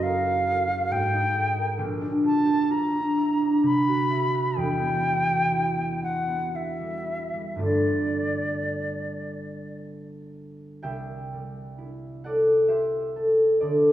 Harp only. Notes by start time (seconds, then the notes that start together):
Already playing: F#1 F#2 C#4 F#4 C5
0.03 A#4
0.25 F#4
0.47 G#4
0.90 G#2
1.13 D#4
1.34 G#4
1.57 A#4
1.78 A#1 A#2
2.01 D4
2.23 F4
2.46 G4
2.70 F4
2.92 D4
3.17 E4
3.40 D4
3.63 C3
3.87 F#4
4.10 E5
4.34 F#5
4.56 E1 E2
4.80 B3
5.03 E4
5.28 F#4
5.51 E4
5.78 B3
6.03 C4
6.27 B3
6.54 E4
6.80 G3
7.06 E4
7.33 G3
7.56 G1 G2 A3 C4 F4 D5
10.83 C2 E5 G5
11.33 G3
11.78 E4
12.24 A4 D5 F#5
12.68 G4 C5 E5
13.16 A4
13.60 D2 A4 D5